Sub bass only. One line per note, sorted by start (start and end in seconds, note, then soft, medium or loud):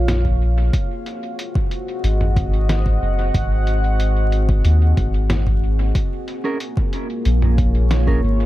0.00 0.70 A#1 medium
2.04 2.98 G#1 loud
3.02 3.31 F#1 medium
3.34 4.62 G#1 loud
4.65 4.93 D#2 medium
4.97 5.92 G#1 medium
7.26 8.20 A#1 loud
8.23 8.46 G#1 loud